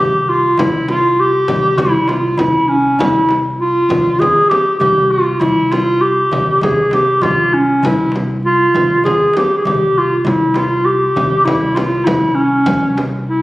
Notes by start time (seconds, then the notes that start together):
Already playing: G4
0.00 C2
0.28 F4, darbuka ka
0.58 C2 E4, darbuka dum, frame drum
0.88 F4, darbuka tek, frame drum
1.19 G4, darbuka ka
1.48 C2, frame drum, darbuka dum
1.63 darbuka ka
1.78 C2 E4, darbuka dum, frame drum
2.08 F4, darbuka tek, frame drum
2.38 C2 E4, darbuka dum, frame drum
2.68 C#4, darbuka ka
2.99 C2 E4, darbuka dum, frame drum
3.29 darbuka tek, frame drum
3.60 F4, darbuka ka
3.89 C2, frame drum, darbuka dum
4.05 darbuka ka
4.19 E2 G#4, darbuka dum, frame drum
4.49 G4, darbuka tek, frame drum
4.80 C2 G4, darbuka dum, frame drum
5.11 F4, darbuka ka
5.40 C2 E4, frame drum, darbuka dum
5.57 darbuka ka
5.72 F4, darbuka tek, frame drum
5.87 darbuka ka
6.02 G4, darbuka ka
6.16 darbuka ka
6.31 C2, darbuka dum, frame drum
6.61 C2 G#4, darbuka dum, frame drum
6.76 darbuka ka
6.91 G4, darbuka tek, frame drum
7.07 darbuka ka
7.22 C2 F4, darbuka dum, frame drum
7.52 C#4, darbuka ka
7.68 darbuka ka
7.83 C2 E4, darbuka dum, frame drum
8.12 darbuka tek, frame drum
8.43 F4, darbuka ka
8.74 C2, darbuka dum, frame drum
8.89 darbuka ka
9.04 E2 G#4, darbuka dum, frame drum
9.34 G4, darbuka tek, frame drum
9.58 G#4
9.65 C2 G4, darbuka dum, frame drum
9.96 F4, darbuka ka
10.18 F4
10.25 C2 E4, darbuka dum, frame drum
10.54 F4, darbuka tek, frame drum
10.85 G4, darbuka ka
11.16 C2, darbuka dum, frame drum
11.32 darbuka ka
11.45 C2 E4, darbuka dum, frame drum
11.76 F4, darbuka tek, frame drum
12.05 C2 E4, darbuka dum, frame drum
12.35 C#4, darbuka ka
12.66 C2, frame drum, darbuka dum
12.98 darbuka tek, frame drum
13.27 E4, darbuka ka